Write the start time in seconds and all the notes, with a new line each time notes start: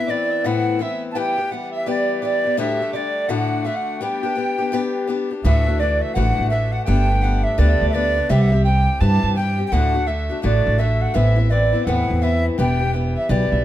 Already playing: E5
0.07 E3 B3 C4 D5
0.11 E4
0.31 E5
0.44 A2 E3 B3 C4 E4 F#5
0.79 E3 B3 C4 E4 E5
1.11 E3 G5 A5
1.16 G3 B3 G4 G5
1.38 G3 B3 G4
1.51 E3 G3 B3 G4 F#5
1.72 E5
1.86 E3 G3 B3 G4 D5
1.90 D5
2.22 E3 G3 B3 G4 D5
2.44 G3 B3 G4
2.57 D2 A2 D3 G3 A3 G4 E5
2.81 D3 G3 A3 G4
2.92 D3 G3 A3 G4 D5
3.28 D2 A2 D3 A3 D4 F#4 F#5
3.64 D3 A3 D4 F#4 E5
3.75 F#5
3.98 G3 B3 D4 G5
4.03 G4
4.23 B3 D4 G4
4.35 G3 B3 D4 G4
4.58 B3 D4 G4
4.72 G3 B3 D4 G4
5.07 G3 B3 D4 G4
5.31 B3 D4 G4
5.44 D2 A2 E3 A3 D4 F#4 E5
5.67 E3 A3 D4 F#4
5.79 E3 A3 D4 F#4 D5
6.00 E5
6.14 A1 D2 A2 E3 A3 D4 F#4 F#5
6.36 A1 F#5
6.50 E3 A3 D4 F#4 E5
6.72 F#5
6.85 G1 G3 A3 B3 D4 G5
7.09 A3 B3 D4
7.21 G3 A3 B3 D4 F#5
7.44 E5
7.58 D2 G3 A3 B3 D4 D5
7.69 E5
7.81 D2 D5
7.89 G3 D5 E5
7.94 A3 B3 D4 D5
8.16 A3 B3 D4
8.29 C2 C3 E3 G3 C4 G4 E5
8.41 F#5
8.52 G3 C4 G4 E5
8.65 E3 G3 C4 G4 G5
9.00 G2 C3 E3 G3 C4 G4 A5
9.23 G2 A5
9.36 E3 G3 C4 G4 G5
9.59 G3 C4 G4
9.67 G5
9.72 D2 A2 D3 A3 D4 F#4 F#5
9.94 D3 A3 D4 F#4
10.07 D3 A3 D4 F#4 E5
10.29 D3 A3 D4 F#4
10.42 A1 D2 A2 D3 A3 D4 F#4 D5
10.66 A1
10.78 D3 A3 D4 F#4 E5
11.02 F#5
11.14 A1 A2 E3 B3 C4 E4 E5
11.36 B3 C4 E4
11.50 E3 B3 C4 E4 D5
11.73 B3 C4 E4
11.85 E2 A2 E3 B3 C4 E4 F#5
12.10 E2
12.21 E3 B3 C4 E4 E5
12.57 E1 E3 G3 B3 G4 G5
12.80 G3 B3 G4
12.93 E3 G3 B3 G4
13.16 E5
13.29 B1 E3 G3 B3 G4 D5
13.52 B1 E5